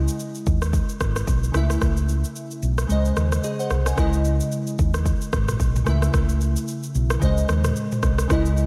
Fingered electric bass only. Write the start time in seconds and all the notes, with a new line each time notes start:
0.47 D#2
1.01 G#1
1.27 B1
1.54 C#2
1.81 C#2
2.63 B1
2.90 C#2
3.17 D#2
3.71 C2
3.98 C#2
4.79 D#2
5.33 G#1
5.60 B1
5.87 C#2
6.14 C#2
6.95 B1
7.22 C#2
7.49 D#2
8.03 C2
8.30 C#2